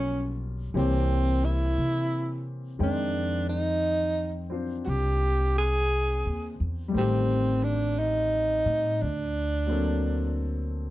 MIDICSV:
0, 0, Header, 1, 4, 480
1, 0, Start_track
1, 0, Tempo, 1032702
1, 1306, Time_signature, 4, 2, 24, 8
1, 5068, End_track
2, 0, Start_track
2, 0, Title_t, "Tenor saxophone"
2, 0, Program_c, 0, 66
2, 0, Note_on_c, 0, 61, 73
2, 189, Note_off_c, 0, 61, 0
2, 364, Note_on_c, 0, 60, 64
2, 673, Note_on_c, 0, 64, 80
2, 680, Note_off_c, 0, 60, 0
2, 1147, Note_off_c, 0, 64, 0
2, 1316, Note_on_c, 0, 62, 74
2, 1607, Note_off_c, 0, 62, 0
2, 1624, Note_on_c, 0, 63, 81
2, 2084, Note_off_c, 0, 63, 0
2, 2255, Note_on_c, 0, 66, 54
2, 2273, Note_on_c, 0, 67, 77
2, 2280, Note_off_c, 0, 66, 0
2, 2584, Note_off_c, 0, 67, 0
2, 2595, Note_on_c, 0, 68, 86
2, 3050, Note_off_c, 0, 68, 0
2, 3242, Note_on_c, 0, 60, 69
2, 3549, Note_on_c, 0, 62, 70
2, 3556, Note_off_c, 0, 60, 0
2, 3715, Note_on_c, 0, 63, 79
2, 3722, Note_off_c, 0, 62, 0
2, 4194, Note_on_c, 0, 62, 70
2, 4201, Note_off_c, 0, 63, 0
2, 4987, Note_off_c, 0, 62, 0
2, 5068, End_track
3, 0, Start_track
3, 0, Title_t, "Grand piano"
3, 0, Program_c, 1, 0
3, 0, Control_c, 1, 64, 127
3, 0, Note_on_c, 1, 53, 40
3, 0, Note_on_c, 1, 55, 37
3, 0, Note_on_c, 1, 58, 37
3, 0, Note_on_c, 1, 61, 38
3, 0, Note_on_c, 1, 65, 46
3, 339, Note_off_c, 1, 53, 0
3, 339, Note_off_c, 1, 58, 0
3, 344, Note_off_c, 1, 55, 0
3, 344, Note_on_c, 1, 52, 41
3, 346, Note_on_c, 1, 58, 36
3, 348, Note_off_c, 1, 61, 0
3, 348, Note_on_c, 1, 73, 37
3, 349, Note_on_c, 1, 60, 36
3, 350, Note_on_c, 1, 67, 46
3, 352, Control_c, 1, 64, 0
3, 353, Note_off_c, 1, 65, 0
3, 440, Control_c, 1, 64, 127
3, 1295, Note_off_c, 1, 60, 0
3, 1296, Note_on_c, 1, 51, 38
3, 1299, Note_on_c, 1, 56, 36
3, 1301, Note_on_c, 1, 60, 35
3, 1304, Note_on_c, 1, 79, 44
3, 1305, Note_off_c, 1, 52, 0
3, 1306, Note_off_c, 1, 58, 0
3, 1307, Note_off_c, 1, 73, 0
3, 1308, Note_off_c, 1, 67, 0
3, 1312, Control_c, 1, 64, 0
3, 1391, Control_c, 1, 64, 127
3, 2083, Note_off_c, 1, 60, 0
3, 2090, Note_on_c, 1, 60, 31
3, 2095, Note_on_c, 1, 62, 31
3, 2098, Note_on_c, 1, 65, 29
3, 2104, Note_on_c, 1, 72, 37
3, 3199, Note_on_c, 1, 55, 45
3, 3211, Note_on_c, 1, 57, 40
3, 3219, Note_off_c, 1, 60, 0
3, 3221, Note_off_c, 1, 51, 0
3, 3222, Note_off_c, 1, 56, 0
3, 3223, Note_off_c, 1, 62, 0
3, 3225, Note_off_c, 1, 65, 0
3, 3225, Note_off_c, 1, 79, 0
3, 3226, Note_on_c, 1, 60, 40
3, 3228, Note_off_c, 1, 72, 0
3, 3232, Control_c, 1, 64, 0
3, 3238, Note_on_c, 1, 51, 38
3, 3248, Note_on_c, 1, 67, 48
3, 3305, Control_c, 1, 64, 127
3, 4173, Note_off_c, 1, 55, 0
3, 4179, Note_off_c, 1, 57, 0
3, 4187, Note_off_c, 1, 60, 0
3, 4193, Note_off_c, 1, 51, 0
3, 4194, Control_c, 1, 64, 0
3, 4198, Note_off_c, 1, 67, 0
3, 4273, Control_c, 1, 64, 127
3, 4492, Note_on_c, 1, 54, 34
3, 4497, Note_on_c, 1, 58, 31
3, 4504, Note_on_c, 1, 60, 32
3, 4511, Note_on_c, 1, 62, 32
3, 4514, Note_on_c, 1, 69, 39
3, 5068, Note_off_c, 1, 54, 0
3, 5068, Note_off_c, 1, 58, 0
3, 5068, Note_off_c, 1, 60, 0
3, 5068, Note_off_c, 1, 62, 0
3, 5068, Note_off_c, 1, 69, 0
3, 5068, End_track
4, 0, Start_track
4, 0, Title_t, "Upright bass"
4, 0, Program_c, 2, 32
4, 0, Note_on_c, 2, 35, 55
4, 327, Note_off_c, 2, 35, 0
4, 344, Note_on_c, 2, 36, 63
4, 806, Note_off_c, 2, 36, 0
4, 824, Note_on_c, 2, 48, 56
4, 1287, Note_off_c, 2, 48, 0
4, 1300, Note_on_c, 2, 41, 64
4, 2244, Note_off_c, 2, 41, 0
4, 2265, Note_on_c, 2, 36, 65
4, 2887, Note_off_c, 2, 36, 0
4, 2908, Note_on_c, 2, 39, 47
4, 3056, Note_off_c, 2, 39, 0
4, 3067, Note_on_c, 2, 40, 51
4, 3216, Note_off_c, 2, 40, 0
4, 3228, Note_on_c, 2, 33, 62
4, 4004, Note_off_c, 2, 33, 0
4, 4022, Note_on_c, 2, 45, 51
4, 4176, Note_off_c, 2, 45, 0
4, 4193, Note_on_c, 2, 38, 61
4, 5068, Note_off_c, 2, 38, 0
4, 5068, End_track
0, 0, End_of_file